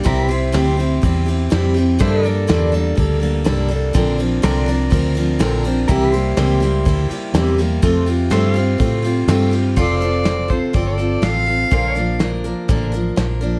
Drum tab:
CC |--------|--------|--------|--------|
RD |xxxxxxxx|xxxxxxxx|xxxxxxxx|xxxxxxxx|
HH |--------|--------|--------|--------|
SD |--o---o-|--o---o-|--o---o-|--o---o-|
BD |o---o---|o---o---|o---o---|o---o---|

CC |--------|x-------|--------|
RD |xxxxxxxx|--------|--------|
HH |--------|-xxxxxx-|xxxxxxx-|
SD |--o---o-|--o---o-|--o---o-|
BD |o---o---|o--oo---|o---o---|